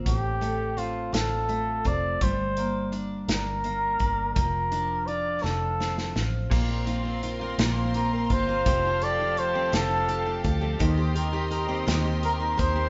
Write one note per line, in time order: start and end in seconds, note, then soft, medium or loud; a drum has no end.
0.00 0.13 A#3 soft
0.00 0.76 C4 soft
0.00 0.13 F4 soft
0.06 1.09 A1 medium
0.06 2.21 A2 medium
0.06 0.80 G4 medium
0.06 kick medium
0.06 closed hi-hat medium
0.41 1.48 A3 medium
0.41 closed hi-hat soft
0.77 1.84 C4 soft
0.77 1.15 F4 medium
0.77 closed hi-hat soft
1.12 1.81 A1 medium
1.12 2.28 F4 soft
1.12 1.89 A4 medium
1.12 snare medium
1.12 closed hi-hat medium
1.49 2.57 A3 soft
1.49 closed hi-hat soft
1.85 2.19 F1 medium
1.85 2.28 C4 medium
1.85 2.24 D5 medium
1.85 kick medium
1.85 closed hi-hat soft
2.21 3.24 G1 medium
2.21 4.35 G3 medium
2.21 2.94 C5 medium
2.21 kick medium
2.21 closed hi-hat medium
2.57 3.63 A#3 medium
2.57 closed hi-hat soft
2.92 3.99 D4 medium
2.92 closed hi-hat soft
3.28 3.96 G1 medium
3.28 4.33 A#4 medium
3.28 snare medium
3.28 closed hi-hat medium
3.64 4.43 A#3 soft
3.64 closed hi-hat soft
3.99 4.34 G1 medium
3.99 4.43 D4 medium
3.99 kick medium
3.99 closed hi-hat soft
4.34 5.40 F1 medium
4.34 5.43 F3 medium
4.34 5.08 A#4 medium
4.34 kick medium
4.34 closed hi-hat medium
4.72 5.51 D4 medium
4.72 closed hi-hat soft
5.07 6.15 F4 soft
5.07 5.44 D5 medium
5.07 closed hi-hat soft
5.43 6.11 F1 medium
5.43 6.51 F3 medium
5.43 6.24 A4 medium
5.43 snare soft
5.80 6.69 C4 soft
5.80 snare medium
5.98 snare medium
6.15 6.49 A1 medium
6.15 6.69 F4 soft
6.15 snare medium
6.50 7.55 A#1 medium
6.50 6.86 A#2 medium
6.50 7.58 A#2 medium
6.50 6.85 F3 medium
6.50 6.86 A#3 medium
6.50 6.86 C4 medium
6.50 6.87 F4 medium
6.50 8.64 A#4 medium
6.50 10.77 F5 medium
6.50 8.64 C6 medium
6.50 kick medium
6.50 crash medium
6.69 7.05 C4 soft
6.86 7.04 F3 medium
6.86 7.05 A#3 medium
6.86 7.04 C4 medium
6.86 7.23 F4 medium
6.86 7.03 F4 medium
6.86 closed hi-hat soft
7.04 7.42 A#3 soft
7.04 7.77 C4 medium
7.04 7.40 C4 soft
7.04 7.39 F4 soft
7.23 7.94 F4 medium
7.23 closed hi-hat soft
7.40 8.48 A#3 medium
7.40 7.58 A#3 soft
7.40 7.59 C4 medium
7.40 7.58 F4 medium
7.58 8.26 A#1 medium
7.58 7.94 A#2 medium
7.58 8.66 A#2 medium
7.58 7.93 F3 medium
7.58 7.94 A#3 medium
7.58 7.95 C4 medium
7.58 7.95 F4 medium
7.58 snare medium
7.58 closed hi-hat medium
7.77 8.13 C4 soft
7.94 8.12 F3 medium
7.94 8.13 A#3 medium
7.94 8.12 C4 medium
7.94 8.30 F4 medium
7.94 8.10 F4 medium
7.94 8.12 A#4 medium
7.94 closed hi-hat soft
8.11 8.49 A#3 soft
8.11 8.48 C4 soft
8.11 8.85 C4 soft
8.11 8.46 F4 soft
8.11 8.34 A#4 medium
8.30 8.64 G1 medium
8.30 8.85 F4 medium
8.30 9.05 C5 medium
8.30 kick medium
8.30 closed hi-hat soft
8.47 8.73 A#3 soft
8.47 8.66 A#3 soft
8.47 8.66 C4 soft
8.47 8.66 F4 soft
8.65 9.69 F1 medium
8.65 9.01 F2 medium
8.65 9.02 C3 medium
8.65 9.71 F3 medium
8.65 9.00 F3 medium
8.65 9.01 A3 medium
8.65 9.02 C4 medium
8.65 12.89 G4 medium
8.65 9.02 G4 medium
8.65 10.79 A5 medium
8.65 kick medium
8.65 closed hi-hat medium
8.85 9.19 F4 medium
9.01 9.19 F3 soft
9.01 9.20 A3 medium
9.01 9.19 C4 medium
9.01 9.18 G4 soft
9.01 9.37 A4 medium
9.01 9.40 D5 medium
9.01 closed hi-hat soft
9.19 9.56 F3 soft
9.19 9.55 A3 soft
9.19 9.54 C4 soft
9.19 9.90 F4 medium
9.19 9.53 G4 medium
9.37 10.07 A4 medium
9.37 9.74 C5 medium
9.37 closed hi-hat soft
9.54 9.72 F3 soft
9.54 9.73 A3 soft
9.54 10.61 C4 medium
9.54 9.73 C4 soft
9.54 9.72 G4 medium
9.72 10.41 F1 medium
9.72 10.08 F2 medium
9.72 10.09 C3 medium
9.72 10.79 F3 medium
9.72 10.06 F3 medium
9.72 10.07 A3 medium
9.72 10.09 C4 medium
9.72 10.09 G4 medium
9.72 10.51 A4 medium
9.72 snare medium
9.72 closed hi-hat medium
9.91 10.25 F4 soft
10.08 10.26 F3 medium
10.08 10.26 A3 medium
10.08 10.26 C4 medium
10.08 10.24 G4 medium
10.08 10.43 A4 medium
10.08 closed hi-hat soft
10.25 10.63 F3 soft
10.25 10.62 A3 soft
10.25 10.61 C4 soft
10.25 10.87 F4 soft
10.25 10.60 G4 soft
10.44 10.78 D2 medium
10.44 10.87 A4 medium
10.44 kick medium
10.44 closed hi-hat soft
10.61 10.79 F3 soft
10.61 10.80 A3 soft
10.61 11.18 C4 medium
10.61 10.79 C4 soft
10.61 10.80 G4 medium
10.79 11.84 D#2 medium
10.79 11.85 D#3 medium
10.79 11.13 D#3 medium
10.79 11.15 A#3 medium
10.79 11.16 C4 medium
10.79 11.16 G4 medium
10.79 12.89 D#5 medium
10.79 12.89 C6 medium
10.79 kick medium
10.79 closed hi-hat medium
10.98 11.32 G4 medium
11.15 11.33 D#3 medium
11.15 11.34 A#3 medium
11.15 11.33 C4 medium
11.15 11.32 G4 medium
11.15 11.50 A#4 medium
11.15 closed hi-hat medium
11.33 11.70 A#3 soft
11.33 11.69 C4 medium
11.33 11.67 G4 medium
11.33 12.03 G4 medium
11.51 12.22 A#4 medium
11.51 closed hi-hat soft
11.68 11.86 A#3 medium
11.68 12.75 C4 medium
11.68 11.86 C4 medium
11.68 11.87 G4 medium
11.86 12.55 D#2 medium
11.86 12.21 D#3 medium
11.86 12.89 D#3 medium
11.86 12.22 A#3 medium
11.86 12.23 C4 medium
11.86 12.24 G4 medium
11.86 snare medium
11.86 closed hi-hat medium
12.04 12.39 G4 medium
12.22 12.41 D#3 soft
12.22 12.41 A#3 medium
12.22 12.41 C4 medium
12.22 12.39 G4 medium
12.22 12.56 A#4 medium
12.22 12.33 A#4 medium
12.22 closed hi-hat soft
12.40 12.78 A#3 soft
12.40 12.76 C4 soft
12.40 12.75 G4 soft
12.40 12.89 G4 medium
12.40 12.61 A#4 medium
12.58 12.89 D#2 medium
12.58 12.89 A#4 medium
12.58 12.89 C5 loud
12.58 kick medium
12.58 closed hi-hat soft
12.76 12.89 A#3 soft
12.76 12.89 C4 soft
12.76 12.89 G4 soft